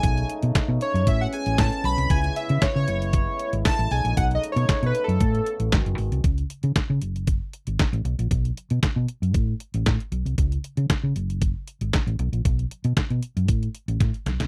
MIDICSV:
0, 0, Header, 1, 6, 480
1, 0, Start_track
1, 0, Tempo, 517241
1, 33, Time_signature, 4, 2, 24, 8
1, 13432, End_track
2, 0, Start_track
2, 0, Title_t, "Analog polysynth"
2, 0, Program_c, 0, 90
2, 0, Note_on_c, 0, 80, 109
2, 237, Note_off_c, 0, 80, 0
2, 763, Note_on_c, 0, 73, 84
2, 1002, Note_on_c, 0, 76, 97
2, 1005, Note_off_c, 0, 73, 0
2, 1125, Note_on_c, 0, 78, 98
2, 1129, Note_off_c, 0, 76, 0
2, 1174, Note_off_c, 0, 78, 0
2, 1238, Note_on_c, 0, 80, 99
2, 1459, Note_off_c, 0, 80, 0
2, 1479, Note_on_c, 0, 81, 112
2, 1718, Note_on_c, 0, 83, 103
2, 1723, Note_off_c, 0, 81, 0
2, 1955, Note_on_c, 0, 80, 98
2, 1963, Note_off_c, 0, 83, 0
2, 2194, Note_on_c, 0, 76, 88
2, 2202, Note_off_c, 0, 80, 0
2, 2433, Note_on_c, 0, 73, 99
2, 2441, Note_off_c, 0, 76, 0
2, 2552, Note_off_c, 0, 73, 0
2, 2562, Note_on_c, 0, 73, 103
2, 3244, Note_off_c, 0, 73, 0
2, 3392, Note_on_c, 0, 81, 118
2, 3633, Note_on_c, 0, 80, 90
2, 3640, Note_off_c, 0, 81, 0
2, 3871, Note_on_c, 0, 78, 89
2, 3881, Note_off_c, 0, 80, 0
2, 3943, Note_off_c, 0, 78, 0
2, 4036, Note_on_c, 0, 75, 86
2, 4107, Note_off_c, 0, 75, 0
2, 4196, Note_on_c, 0, 73, 86
2, 4513, Note_on_c, 0, 71, 82
2, 4524, Note_off_c, 0, 73, 0
2, 4662, Note_off_c, 0, 71, 0
2, 4677, Note_on_c, 0, 69, 77
2, 5122, Note_off_c, 0, 69, 0
2, 13432, End_track
3, 0, Start_track
3, 0, Title_t, "French horn section"
3, 0, Program_c, 1, 60
3, 0, Note_on_c, 1, 49, 81
3, 0, Note_on_c, 1, 56, 68
3, 0, Note_on_c, 1, 57, 76
3, 0, Note_on_c, 1, 63, 93
3, 975, Note_off_c, 1, 56, 0
3, 980, Note_off_c, 1, 63, 0
3, 981, Note_off_c, 1, 49, 0
3, 981, Note_off_c, 1, 57, 0
3, 987, Note_on_c, 1, 56, 70
3, 988, Note_on_c, 1, 59, 66
3, 990, Note_on_c, 1, 45, 67
3, 991, Note_on_c, 1, 61, 79
3, 1941, Note_off_c, 1, 59, 0
3, 1942, Note_off_c, 1, 45, 0
3, 1943, Note_off_c, 1, 61, 0
3, 1953, Note_on_c, 1, 59, 72
3, 1955, Note_on_c, 1, 49, 78
3, 1957, Note_on_c, 1, 64, 81
3, 2667, Note_off_c, 1, 49, 0
3, 2675, Note_on_c, 1, 45, 66
3, 3617, Note_off_c, 1, 59, 0
3, 3619, Note_off_c, 1, 64, 0
3, 3625, Note_off_c, 1, 45, 0
3, 3636, Note_on_c, 1, 63, 88
3, 3637, Note_on_c, 1, 49, 82
3, 3637, Note_on_c, 1, 57, 75
3, 4793, Note_off_c, 1, 56, 0
3, 4823, Note_off_c, 1, 63, 0
3, 4833, Note_on_c, 1, 69, 76
3, 4834, Note_on_c, 1, 59, 61
3, 5299, Note_off_c, 1, 49, 0
3, 5299, Note_off_c, 1, 57, 0
3, 5309, Note_off_c, 1, 69, 0
3, 5315, Note_on_c, 1, 66, 83
3, 5316, Note_on_c, 1, 51, 70
3, 5317, Note_on_c, 1, 56, 66
3, 5784, Note_off_c, 1, 59, 0
3, 5790, Note_off_c, 1, 51, 0
3, 5790, Note_off_c, 1, 66, 0
3, 5791, Note_off_c, 1, 56, 0
3, 13432, End_track
4, 0, Start_track
4, 0, Title_t, "Fingered electric bass"
4, 0, Program_c, 2, 33
4, 33, Note_on_c, 2, 35, 107
4, 205, Note_off_c, 2, 35, 0
4, 399, Note_on_c, 2, 47, 90
4, 481, Note_off_c, 2, 47, 0
4, 635, Note_on_c, 2, 47, 98
4, 718, Note_off_c, 2, 47, 0
4, 874, Note_on_c, 2, 42, 85
4, 992, Note_off_c, 2, 42, 0
4, 992, Note_on_c, 2, 45, 109
4, 1164, Note_off_c, 2, 45, 0
4, 1358, Note_on_c, 2, 33, 80
4, 1440, Note_off_c, 2, 33, 0
4, 1472, Note_on_c, 2, 45, 82
4, 1564, Note_off_c, 2, 45, 0
4, 1706, Note_on_c, 2, 35, 101
4, 1800, Note_off_c, 2, 35, 0
4, 1834, Note_on_c, 2, 36, 97
4, 1917, Note_off_c, 2, 36, 0
4, 1950, Note_on_c, 2, 37, 103
4, 2123, Note_off_c, 2, 37, 0
4, 2320, Note_on_c, 2, 49, 98
4, 2401, Note_off_c, 2, 49, 0
4, 2558, Note_on_c, 2, 49, 93
4, 2640, Note_off_c, 2, 49, 0
4, 2671, Note_on_c, 2, 30, 97
4, 3015, Note_off_c, 2, 30, 0
4, 3275, Note_on_c, 2, 32, 88
4, 3358, Note_off_c, 2, 32, 0
4, 3516, Note_on_c, 2, 33, 103
4, 3598, Note_off_c, 2, 33, 0
4, 3629, Note_on_c, 2, 35, 100
4, 3722, Note_off_c, 2, 35, 0
4, 3754, Note_on_c, 2, 34, 85
4, 3837, Note_off_c, 2, 34, 0
4, 3873, Note_on_c, 2, 35, 110
4, 4045, Note_off_c, 2, 35, 0
4, 4234, Note_on_c, 2, 47, 110
4, 4317, Note_off_c, 2, 47, 0
4, 4479, Note_on_c, 2, 47, 97
4, 4560, Note_off_c, 2, 47, 0
4, 4716, Note_on_c, 2, 42, 87
4, 4799, Note_off_c, 2, 42, 0
4, 4832, Note_on_c, 2, 45, 105
4, 5005, Note_off_c, 2, 45, 0
4, 5195, Note_on_c, 2, 33, 93
4, 5278, Note_off_c, 2, 33, 0
4, 5312, Note_on_c, 2, 32, 109
4, 5404, Note_off_c, 2, 32, 0
4, 5438, Note_on_c, 2, 30, 94
4, 5520, Note_off_c, 2, 30, 0
4, 5553, Note_on_c, 2, 32, 90
4, 5644, Note_off_c, 2, 32, 0
4, 5677, Note_on_c, 2, 36, 83
4, 5759, Note_off_c, 2, 36, 0
4, 5791, Note_on_c, 2, 37, 101
4, 5964, Note_off_c, 2, 37, 0
4, 6159, Note_on_c, 2, 49, 83
4, 6240, Note_off_c, 2, 49, 0
4, 6401, Note_on_c, 2, 49, 88
4, 6482, Note_off_c, 2, 49, 0
4, 6511, Note_on_c, 2, 30, 78
4, 6855, Note_off_c, 2, 30, 0
4, 7119, Note_on_c, 2, 32, 79
4, 7201, Note_off_c, 2, 32, 0
4, 7356, Note_on_c, 2, 33, 91
4, 7438, Note_off_c, 2, 33, 0
4, 7468, Note_on_c, 2, 35, 92
4, 7561, Note_off_c, 2, 35, 0
4, 7598, Note_on_c, 2, 34, 82
4, 7680, Note_off_c, 2, 34, 0
4, 7713, Note_on_c, 2, 35, 90
4, 7885, Note_off_c, 2, 35, 0
4, 8081, Note_on_c, 2, 47, 81
4, 8162, Note_off_c, 2, 47, 0
4, 8316, Note_on_c, 2, 47, 98
4, 8399, Note_off_c, 2, 47, 0
4, 8556, Note_on_c, 2, 42, 78
4, 8671, Note_off_c, 2, 42, 0
4, 8671, Note_on_c, 2, 45, 102
4, 8843, Note_off_c, 2, 45, 0
4, 9041, Note_on_c, 2, 33, 84
4, 9122, Note_off_c, 2, 33, 0
4, 9154, Note_on_c, 2, 45, 89
4, 9245, Note_off_c, 2, 45, 0
4, 9389, Note_on_c, 2, 35, 92
4, 9482, Note_off_c, 2, 35, 0
4, 9516, Note_on_c, 2, 36, 77
4, 9598, Note_off_c, 2, 36, 0
4, 9635, Note_on_c, 2, 37, 96
4, 9806, Note_off_c, 2, 37, 0
4, 9998, Note_on_c, 2, 49, 85
4, 10079, Note_off_c, 2, 49, 0
4, 10240, Note_on_c, 2, 49, 85
4, 10321, Note_off_c, 2, 49, 0
4, 10353, Note_on_c, 2, 30, 96
4, 10697, Note_off_c, 2, 30, 0
4, 10961, Note_on_c, 2, 32, 71
4, 11042, Note_off_c, 2, 32, 0
4, 11198, Note_on_c, 2, 33, 88
4, 11280, Note_off_c, 2, 33, 0
4, 11313, Note_on_c, 2, 35, 98
4, 11404, Note_off_c, 2, 35, 0
4, 11437, Note_on_c, 2, 34, 76
4, 11519, Note_off_c, 2, 34, 0
4, 11555, Note_on_c, 2, 35, 98
4, 11726, Note_off_c, 2, 35, 0
4, 11921, Note_on_c, 2, 47, 90
4, 12002, Note_off_c, 2, 47, 0
4, 12161, Note_on_c, 2, 47, 89
4, 12242, Note_off_c, 2, 47, 0
4, 12403, Note_on_c, 2, 42, 81
4, 12516, Note_off_c, 2, 42, 0
4, 12516, Note_on_c, 2, 45, 89
4, 12687, Note_off_c, 2, 45, 0
4, 12881, Note_on_c, 2, 33, 77
4, 12961, Note_off_c, 2, 33, 0
4, 12995, Note_on_c, 2, 45, 84
4, 13086, Note_off_c, 2, 45, 0
4, 13232, Note_on_c, 2, 35, 93
4, 13324, Note_off_c, 2, 35, 0
4, 13362, Note_on_c, 2, 36, 77
4, 13432, Note_off_c, 2, 36, 0
4, 13432, End_track
5, 0, Start_track
5, 0, Title_t, "Muted fingered electric bass strokes"
5, 8193, Note_on_c, 9, 29, 44
5, 8286, Note_off_c, 9, 29, 0
5, 10112, Note_on_c, 9, 29, 42
5, 10205, Note_off_c, 9, 29, 0
5, 12033, Note_on_c, 9, 29, 48
5, 12126, Note_off_c, 9, 29, 0
5, 13432, End_track
6, 0, Start_track
6, 0, Title_t, "Drums"
6, 31, Note_on_c, 9, 42, 85
6, 32, Note_on_c, 9, 36, 105
6, 124, Note_off_c, 9, 36, 0
6, 124, Note_off_c, 9, 42, 0
6, 162, Note_on_c, 9, 42, 36
6, 255, Note_off_c, 9, 42, 0
6, 274, Note_on_c, 9, 42, 85
6, 367, Note_off_c, 9, 42, 0
6, 395, Note_on_c, 9, 42, 54
6, 487, Note_off_c, 9, 42, 0
6, 511, Note_on_c, 9, 36, 114
6, 513, Note_on_c, 9, 42, 94
6, 514, Note_on_c, 9, 38, 110
6, 519, Note_on_c, 9, 39, 94
6, 604, Note_off_c, 9, 36, 0
6, 606, Note_off_c, 9, 42, 0
6, 607, Note_off_c, 9, 38, 0
6, 612, Note_off_c, 9, 39, 0
6, 752, Note_on_c, 9, 42, 81
6, 845, Note_off_c, 9, 42, 0
6, 886, Note_on_c, 9, 42, 52
6, 979, Note_off_c, 9, 42, 0
6, 992, Note_on_c, 9, 36, 117
6, 992, Note_on_c, 9, 42, 97
6, 1085, Note_off_c, 9, 36, 0
6, 1085, Note_off_c, 9, 42, 0
6, 1231, Note_on_c, 9, 42, 65
6, 1324, Note_off_c, 9, 42, 0
6, 1355, Note_on_c, 9, 42, 56
6, 1448, Note_off_c, 9, 42, 0
6, 1468, Note_on_c, 9, 42, 80
6, 1469, Note_on_c, 9, 38, 103
6, 1472, Note_on_c, 9, 36, 127
6, 1474, Note_on_c, 9, 39, 75
6, 1561, Note_off_c, 9, 42, 0
6, 1562, Note_off_c, 9, 38, 0
6, 1565, Note_off_c, 9, 36, 0
6, 1567, Note_off_c, 9, 39, 0
6, 1599, Note_on_c, 9, 42, 37
6, 1692, Note_off_c, 9, 42, 0
6, 1709, Note_on_c, 9, 46, 63
6, 1801, Note_off_c, 9, 46, 0
6, 1838, Note_on_c, 9, 42, 51
6, 1931, Note_off_c, 9, 42, 0
6, 1949, Note_on_c, 9, 42, 86
6, 1950, Note_on_c, 9, 36, 98
6, 2042, Note_off_c, 9, 42, 0
6, 2043, Note_off_c, 9, 36, 0
6, 2079, Note_on_c, 9, 42, 33
6, 2171, Note_off_c, 9, 42, 0
6, 2193, Note_on_c, 9, 42, 77
6, 2286, Note_off_c, 9, 42, 0
6, 2314, Note_on_c, 9, 42, 51
6, 2407, Note_off_c, 9, 42, 0
6, 2429, Note_on_c, 9, 36, 99
6, 2429, Note_on_c, 9, 42, 91
6, 2430, Note_on_c, 9, 38, 116
6, 2435, Note_on_c, 9, 39, 89
6, 2521, Note_off_c, 9, 42, 0
6, 2522, Note_off_c, 9, 36, 0
6, 2522, Note_off_c, 9, 38, 0
6, 2528, Note_off_c, 9, 39, 0
6, 2670, Note_on_c, 9, 42, 81
6, 2763, Note_off_c, 9, 42, 0
6, 2802, Note_on_c, 9, 42, 53
6, 2895, Note_off_c, 9, 42, 0
6, 2906, Note_on_c, 9, 42, 98
6, 2909, Note_on_c, 9, 36, 124
6, 2999, Note_off_c, 9, 42, 0
6, 3002, Note_off_c, 9, 36, 0
6, 3150, Note_on_c, 9, 42, 68
6, 3243, Note_off_c, 9, 42, 0
6, 3276, Note_on_c, 9, 42, 56
6, 3368, Note_off_c, 9, 42, 0
6, 3388, Note_on_c, 9, 42, 81
6, 3389, Note_on_c, 9, 38, 103
6, 3391, Note_on_c, 9, 36, 123
6, 3394, Note_on_c, 9, 39, 80
6, 3481, Note_off_c, 9, 42, 0
6, 3482, Note_off_c, 9, 38, 0
6, 3484, Note_off_c, 9, 36, 0
6, 3487, Note_off_c, 9, 39, 0
6, 3518, Note_on_c, 9, 42, 39
6, 3611, Note_off_c, 9, 42, 0
6, 3629, Note_on_c, 9, 46, 67
6, 3721, Note_off_c, 9, 46, 0
6, 3758, Note_on_c, 9, 42, 51
6, 3851, Note_off_c, 9, 42, 0
6, 3871, Note_on_c, 9, 36, 97
6, 3872, Note_on_c, 9, 42, 93
6, 3964, Note_off_c, 9, 36, 0
6, 3964, Note_off_c, 9, 42, 0
6, 4001, Note_on_c, 9, 42, 31
6, 4093, Note_off_c, 9, 42, 0
6, 4116, Note_on_c, 9, 42, 79
6, 4209, Note_off_c, 9, 42, 0
6, 4237, Note_on_c, 9, 42, 57
6, 4330, Note_off_c, 9, 42, 0
6, 4350, Note_on_c, 9, 36, 112
6, 4351, Note_on_c, 9, 42, 95
6, 4352, Note_on_c, 9, 38, 117
6, 4357, Note_on_c, 9, 39, 96
6, 4443, Note_off_c, 9, 36, 0
6, 4444, Note_off_c, 9, 42, 0
6, 4445, Note_off_c, 9, 38, 0
6, 4450, Note_off_c, 9, 39, 0
6, 4480, Note_on_c, 9, 42, 36
6, 4573, Note_off_c, 9, 42, 0
6, 4591, Note_on_c, 9, 42, 80
6, 4684, Note_off_c, 9, 42, 0
6, 4724, Note_on_c, 9, 42, 54
6, 4817, Note_off_c, 9, 42, 0
6, 4830, Note_on_c, 9, 42, 95
6, 4831, Note_on_c, 9, 36, 110
6, 4922, Note_off_c, 9, 42, 0
6, 4924, Note_off_c, 9, 36, 0
6, 4962, Note_on_c, 9, 42, 35
6, 5055, Note_off_c, 9, 42, 0
6, 5071, Note_on_c, 9, 42, 71
6, 5164, Note_off_c, 9, 42, 0
6, 5195, Note_on_c, 9, 42, 63
6, 5288, Note_off_c, 9, 42, 0
6, 5310, Note_on_c, 9, 42, 80
6, 5311, Note_on_c, 9, 38, 106
6, 5313, Note_on_c, 9, 36, 127
6, 5316, Note_on_c, 9, 39, 85
6, 5403, Note_off_c, 9, 42, 0
6, 5404, Note_off_c, 9, 38, 0
6, 5406, Note_off_c, 9, 36, 0
6, 5409, Note_off_c, 9, 39, 0
6, 5441, Note_on_c, 9, 42, 31
6, 5533, Note_off_c, 9, 42, 0
6, 5549, Note_on_c, 9, 46, 65
6, 5642, Note_off_c, 9, 46, 0
6, 5680, Note_on_c, 9, 42, 49
6, 5773, Note_off_c, 9, 42, 0
6, 5791, Note_on_c, 9, 36, 95
6, 5791, Note_on_c, 9, 42, 76
6, 5884, Note_off_c, 9, 36, 0
6, 5884, Note_off_c, 9, 42, 0
6, 5920, Note_on_c, 9, 42, 33
6, 6013, Note_off_c, 9, 42, 0
6, 6033, Note_on_c, 9, 42, 77
6, 6125, Note_off_c, 9, 42, 0
6, 6153, Note_on_c, 9, 42, 48
6, 6246, Note_off_c, 9, 42, 0
6, 6270, Note_on_c, 9, 42, 92
6, 6271, Note_on_c, 9, 36, 94
6, 6271, Note_on_c, 9, 38, 106
6, 6276, Note_on_c, 9, 39, 84
6, 6363, Note_off_c, 9, 36, 0
6, 6363, Note_off_c, 9, 42, 0
6, 6364, Note_off_c, 9, 38, 0
6, 6369, Note_off_c, 9, 39, 0
6, 6510, Note_on_c, 9, 42, 72
6, 6603, Note_off_c, 9, 42, 0
6, 6643, Note_on_c, 9, 42, 46
6, 6736, Note_off_c, 9, 42, 0
6, 6749, Note_on_c, 9, 42, 95
6, 6751, Note_on_c, 9, 36, 110
6, 6842, Note_off_c, 9, 42, 0
6, 6844, Note_off_c, 9, 36, 0
6, 6992, Note_on_c, 9, 42, 66
6, 7085, Note_off_c, 9, 42, 0
6, 7116, Note_on_c, 9, 42, 57
6, 7209, Note_off_c, 9, 42, 0
6, 7232, Note_on_c, 9, 42, 73
6, 7233, Note_on_c, 9, 38, 105
6, 7234, Note_on_c, 9, 36, 120
6, 7238, Note_on_c, 9, 39, 85
6, 7325, Note_off_c, 9, 42, 0
6, 7326, Note_off_c, 9, 38, 0
6, 7327, Note_off_c, 9, 36, 0
6, 7331, Note_off_c, 9, 39, 0
6, 7362, Note_on_c, 9, 42, 32
6, 7454, Note_off_c, 9, 42, 0
6, 7472, Note_on_c, 9, 42, 60
6, 7565, Note_off_c, 9, 42, 0
6, 7601, Note_on_c, 9, 42, 54
6, 7694, Note_off_c, 9, 42, 0
6, 7712, Note_on_c, 9, 36, 100
6, 7713, Note_on_c, 9, 42, 78
6, 7804, Note_off_c, 9, 36, 0
6, 7806, Note_off_c, 9, 42, 0
6, 7843, Note_on_c, 9, 42, 33
6, 7936, Note_off_c, 9, 42, 0
6, 7957, Note_on_c, 9, 42, 74
6, 8050, Note_off_c, 9, 42, 0
6, 8076, Note_on_c, 9, 42, 50
6, 8169, Note_off_c, 9, 42, 0
6, 8191, Note_on_c, 9, 36, 108
6, 8191, Note_on_c, 9, 42, 82
6, 8193, Note_on_c, 9, 38, 112
6, 8198, Note_on_c, 9, 39, 91
6, 8284, Note_off_c, 9, 36, 0
6, 8284, Note_off_c, 9, 42, 0
6, 8285, Note_off_c, 9, 38, 0
6, 8290, Note_off_c, 9, 39, 0
6, 8431, Note_on_c, 9, 42, 76
6, 8524, Note_off_c, 9, 42, 0
6, 8565, Note_on_c, 9, 42, 47
6, 8658, Note_off_c, 9, 42, 0
6, 8671, Note_on_c, 9, 42, 82
6, 8672, Note_on_c, 9, 36, 118
6, 8763, Note_off_c, 9, 42, 0
6, 8765, Note_off_c, 9, 36, 0
6, 8911, Note_on_c, 9, 42, 68
6, 9004, Note_off_c, 9, 42, 0
6, 9037, Note_on_c, 9, 42, 56
6, 9130, Note_off_c, 9, 42, 0
6, 9151, Note_on_c, 9, 42, 72
6, 9152, Note_on_c, 9, 38, 88
6, 9154, Note_on_c, 9, 36, 106
6, 9157, Note_on_c, 9, 39, 78
6, 9244, Note_off_c, 9, 42, 0
6, 9245, Note_off_c, 9, 38, 0
6, 9247, Note_off_c, 9, 36, 0
6, 9250, Note_off_c, 9, 39, 0
6, 9283, Note_on_c, 9, 42, 32
6, 9376, Note_off_c, 9, 42, 0
6, 9392, Note_on_c, 9, 42, 60
6, 9485, Note_off_c, 9, 42, 0
6, 9524, Note_on_c, 9, 42, 48
6, 9617, Note_off_c, 9, 42, 0
6, 9633, Note_on_c, 9, 36, 88
6, 9633, Note_on_c, 9, 42, 78
6, 9726, Note_off_c, 9, 36, 0
6, 9726, Note_off_c, 9, 42, 0
6, 9763, Note_on_c, 9, 42, 30
6, 9856, Note_off_c, 9, 42, 0
6, 9876, Note_on_c, 9, 42, 69
6, 9969, Note_off_c, 9, 42, 0
6, 9997, Note_on_c, 9, 42, 51
6, 10090, Note_off_c, 9, 42, 0
6, 10112, Note_on_c, 9, 42, 79
6, 10113, Note_on_c, 9, 36, 99
6, 10113, Note_on_c, 9, 38, 111
6, 10118, Note_on_c, 9, 39, 84
6, 10205, Note_off_c, 9, 42, 0
6, 10206, Note_off_c, 9, 36, 0
6, 10206, Note_off_c, 9, 38, 0
6, 10211, Note_off_c, 9, 39, 0
6, 10355, Note_on_c, 9, 42, 71
6, 10448, Note_off_c, 9, 42, 0
6, 10486, Note_on_c, 9, 42, 51
6, 10579, Note_off_c, 9, 42, 0
6, 10594, Note_on_c, 9, 36, 103
6, 10594, Note_on_c, 9, 42, 96
6, 10687, Note_off_c, 9, 36, 0
6, 10687, Note_off_c, 9, 42, 0
6, 10835, Note_on_c, 9, 42, 64
6, 10927, Note_off_c, 9, 42, 0
6, 10961, Note_on_c, 9, 42, 56
6, 11054, Note_off_c, 9, 42, 0
6, 11074, Note_on_c, 9, 42, 76
6, 11075, Note_on_c, 9, 38, 102
6, 11076, Note_on_c, 9, 36, 109
6, 11080, Note_on_c, 9, 39, 80
6, 11167, Note_off_c, 9, 42, 0
6, 11168, Note_off_c, 9, 38, 0
6, 11169, Note_off_c, 9, 36, 0
6, 11173, Note_off_c, 9, 39, 0
6, 11206, Note_on_c, 9, 42, 32
6, 11299, Note_off_c, 9, 42, 0
6, 11314, Note_on_c, 9, 42, 64
6, 11407, Note_off_c, 9, 42, 0
6, 11443, Note_on_c, 9, 42, 46
6, 11536, Note_off_c, 9, 42, 0
6, 11555, Note_on_c, 9, 36, 96
6, 11556, Note_on_c, 9, 42, 84
6, 11648, Note_off_c, 9, 36, 0
6, 11649, Note_off_c, 9, 42, 0
6, 11685, Note_on_c, 9, 42, 29
6, 11778, Note_off_c, 9, 42, 0
6, 11798, Note_on_c, 9, 42, 80
6, 11891, Note_off_c, 9, 42, 0
6, 11917, Note_on_c, 9, 42, 52
6, 12010, Note_off_c, 9, 42, 0
6, 12034, Note_on_c, 9, 36, 93
6, 12034, Note_on_c, 9, 42, 79
6, 12035, Note_on_c, 9, 38, 111
6, 12040, Note_on_c, 9, 39, 76
6, 12126, Note_off_c, 9, 42, 0
6, 12127, Note_off_c, 9, 36, 0
6, 12127, Note_off_c, 9, 38, 0
6, 12133, Note_off_c, 9, 39, 0
6, 12161, Note_on_c, 9, 42, 33
6, 12254, Note_off_c, 9, 42, 0
6, 12273, Note_on_c, 9, 42, 74
6, 12366, Note_off_c, 9, 42, 0
6, 12406, Note_on_c, 9, 42, 52
6, 12498, Note_off_c, 9, 42, 0
6, 12513, Note_on_c, 9, 42, 97
6, 12515, Note_on_c, 9, 36, 105
6, 12606, Note_off_c, 9, 42, 0
6, 12607, Note_off_c, 9, 36, 0
6, 12646, Note_on_c, 9, 42, 35
6, 12739, Note_off_c, 9, 42, 0
6, 12756, Note_on_c, 9, 42, 65
6, 12849, Note_off_c, 9, 42, 0
6, 12883, Note_on_c, 9, 42, 57
6, 12976, Note_off_c, 9, 42, 0
6, 12996, Note_on_c, 9, 36, 116
6, 12997, Note_on_c, 9, 42, 70
6, 12998, Note_on_c, 9, 38, 47
6, 13089, Note_off_c, 9, 36, 0
6, 13090, Note_off_c, 9, 42, 0
6, 13091, Note_off_c, 9, 38, 0
6, 13124, Note_on_c, 9, 42, 34
6, 13217, Note_off_c, 9, 42, 0
6, 13235, Note_on_c, 9, 42, 56
6, 13237, Note_on_c, 9, 38, 78
6, 13328, Note_off_c, 9, 42, 0
6, 13330, Note_off_c, 9, 38, 0
6, 13363, Note_on_c, 9, 38, 77
6, 13363, Note_on_c, 9, 42, 51
6, 13432, Note_off_c, 9, 38, 0
6, 13432, Note_off_c, 9, 42, 0
6, 13432, End_track
0, 0, End_of_file